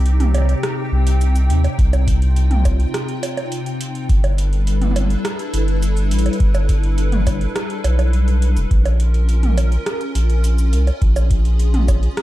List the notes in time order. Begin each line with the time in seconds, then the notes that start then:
Already playing: C2 C3 C4 D#4 G4 G5
0.06 closed hi-hat
0.20 closed hi-hat, mid tom
0.34 closed hi-hat, high bongo
0.38 high bongo
0.42 high bongo
0.45 closed hi-hat, high bongo
0.49 high bongo
0.53 high bongo
0.56 high bongo
0.60 cross-stick, closed hi-hat, high bongo
0.92 C2
1.07 closed hi-hat
1.21 closed hi-hat, shaker
1.36 closed hi-hat, shaker
1.50 D#2, closed hi-hat
1.64 closed hi-hat, high bongo
1.79 C2 F4, kick, closed hi-hat
1.93 closed hi-hat, high bongo, shaker
2.07 kick, closed hi-hat
2.22 closed hi-hat
2.36 closed hi-hat
2.51 closed hi-hat, mid tom
2.65 kick, closed hi-hat, high bongo, shaker
2.80 closed hi-hat
2.94 cross-stick, closed hi-hat
3.09 closed hi-hat
3.23 closed hi-hat, high bongo
3.37 closed hi-hat, high bongo
3.52 closed hi-hat
3.66 closed hi-hat
3.81 closed hi-hat
3.95 closed hi-hat
4.09 G1 G3 D4 E4 A4 B4, kick, closed hi-hat
4.24 closed hi-hat, high bongo
4.38 closed hi-hat
4.53 closed hi-hat
4.67 closed hi-hat
4.82 closed hi-hat, mid tom
4.91 mid tom
4.96 closed hi-hat, high bongo
5.01 mid tom
5.10 closed hi-hat
5.25 cross-stick, closed hi-hat
5.39 closed hi-hat
5.54 G1, closed hi-hat
5.68 closed hi-hat
5.83 closed hi-hat, shaker
5.97 closed hi-hat, shaker
6.11 A1, closed hi-hat
6.19 closed hi-hat
6.26 closed hi-hat, high bongo
6.33 closed hi-hat
6.40 G1, kick, closed hi-hat
6.55 closed hi-hat, high bongo, shaker
6.69 kick, closed hi-hat
6.83 closed hi-hat
6.98 closed hi-hat
7.12 closed hi-hat, mid tom
7.27 kick, closed hi-hat, high bongo, shaker
7.41 closed hi-hat
7.56 cross-stick, closed hi-hat
7.70 closed hi-hat
7.84 B1, closed hi-hat, high bongo
7.99 closed hi-hat, high bongo
8.13 closed hi-hat
8.28 closed hi-hat
8.42 closed hi-hat
8.57 E1, closed hi-hat, shaker
8.71 A#1 C#4 F4 A#4, kick, closed hi-hat
8.85 closed hi-hat, high bongo
9.00 closed hi-hat
9.14 closed hi-hat
9.29 closed hi-hat
9.43 closed hi-hat, mid tom
9.58 closed hi-hat, high bongo
9.72 closed hi-hat
9.86 cross-stick, closed hi-hat
10.01 closed hi-hat
10.15 A#1, closed hi-hat
10.30 closed hi-hat
10.44 closed hi-hat, shaker
10.58 closed hi-hat, shaker
10.73 C2, closed hi-hat
10.87 closed hi-hat, high bongo
11.02 A#1 G#4, kick, closed hi-hat
11.16 closed hi-hat, high bongo, shaker
11.31 kick, closed hi-hat
11.45 closed hi-hat
11.59 closed hi-hat
11.74 closed hi-hat, mid tom
11.88 kick, closed hi-hat, high bongo, shaker
12.03 closed hi-hat
12.17 cross-stick, closed hi-hat